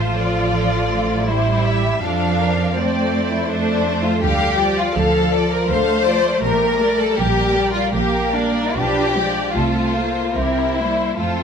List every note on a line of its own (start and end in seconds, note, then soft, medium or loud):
0.00 1.98 A1 soft
0.00 0.53 F3 soft
0.00 0.16 A3 soft
0.00 1.24 F4 medium
0.00 1.25 A4 soft
0.00 0.16 C5 soft
0.16 1.26 F3 soft
0.16 1.29 D5 soft
0.54 0.90 F3 soft
0.92 1.28 A3 soft
1.28 2.02 G3 soft
1.28 2.03 G3 soft
1.28 2.02 E4 medium
1.28 2.03 G4 soft
1.28 1.65 C5 soft
1.65 2.02 E5 soft
2.02 4.18 F2 soft
2.02 2.76 F3 soft
2.02 2.75 F3 soft
2.02 2.75 D4 medium
2.02 2.39 A4 medium
2.02 2.77 F5 soft
2.40 2.77 A#4 soft
2.76 3.47 A3 soft
2.76 3.49 A3 medium
2.76 3.30 C4 medium
2.76 3.49 C5 soft
2.76 3.49 D5 soft
3.31 3.49 E4 medium
3.48 4.20 A3 medium
3.48 4.21 A3 medium
3.48 4.04 D4 medium
3.48 4.21 A4 medium
3.48 4.22 C5 soft
4.03 4.22 F4 medium
4.22 4.83 D2 medium
4.22 4.56 D3 medium
4.22 4.95 G3 medium
4.22 4.76 G4 medium
4.22 4.56 A4 soft
4.22 4.57 F5 soft
4.58 4.95 F3 soft
4.58 4.95 F4 soft
4.58 4.96 D5 soft
4.77 4.95 F4 medium
4.95 5.58 D2 medium
4.95 5.32 D3 soft
4.95 5.70 F3 medium
4.95 5.32 A4 soft
4.95 5.51 A4 medium
4.95 5.33 F5 soft
5.32 5.70 F3 soft
5.32 5.70 F4 soft
5.32 5.70 D5 soft
5.51 5.70 A#4 medium
5.69 6.32 D2 medium
5.69 6.04 D3 soft
5.69 7.18 A3 medium
5.69 6.04 A4 soft
5.69 6.44 C5 medium
5.69 6.04 F5 soft
6.06 6.43 F3 soft
6.06 6.43 F4 soft
6.06 6.43 D5 soft
6.42 7.07 A#1 medium
6.42 6.78 A#3 soft
6.42 6.78 G4 medium
6.42 6.77 A#4 soft
6.42 6.98 A#4 medium
6.80 7.18 G3 soft
6.80 7.18 A#4 soft
6.80 7.18 D5 soft
6.99 7.18 A4 medium
7.17 7.82 A#1 medium
7.17 7.92 G3 soft
7.17 7.55 A#3 soft
7.17 7.74 G4 medium
7.17 7.55 G4 soft
7.17 7.55 A#4 soft
7.55 7.94 G3 soft
7.55 7.94 A#4 soft
7.55 7.93 D5 soft
7.73 7.92 F4 medium
7.92 8.64 A#1 medium
7.92 8.32 A#3 soft
7.92 8.76 A#3 medium
7.92 8.33 G4 medium
7.92 8.31 G4 soft
7.92 8.32 A#4 soft
8.34 8.76 G3 soft
8.34 8.76 D4 medium
8.34 8.76 A#4 soft
8.34 8.76 D5 soft
8.76 9.43 B1 medium
8.76 9.13 F3 soft
8.76 9.15 D4 medium
8.76 9.13 F4 soft
8.76 9.54 G4 medium
8.76 9.14 B4 soft
9.16 9.55 F3 medium
9.16 9.55 G#3 soft
9.16 9.55 D4 soft
9.16 9.56 D5 soft
9.53 10.24 C2 medium
9.53 9.94 A3 soft
9.53 9.93 C4 soft
9.53 10.36 F4 medium
9.53 9.93 F4 soft
9.53 9.93 A4 soft
9.95 10.37 A3 soft
9.95 10.37 A#3 soft
9.95 10.36 A4 soft
9.95 10.36 C5 soft
10.35 11.06 C2 soft
10.35 10.75 C4 soft
10.35 10.78 C4 soft
10.35 11.19 E4 medium
10.35 10.75 G4 soft
10.35 10.75 A#4 soft
10.77 11.19 G3 soft
10.77 11.19 A#3 soft
10.77 11.19 E4 soft
10.77 11.18 C5 soft
11.18 11.43 F2 soft
11.18 11.43 A3 soft
11.18 11.43 C4 soft
11.18 11.43 F4 medium
11.18 11.43 F4 soft
11.18 11.43 A4 soft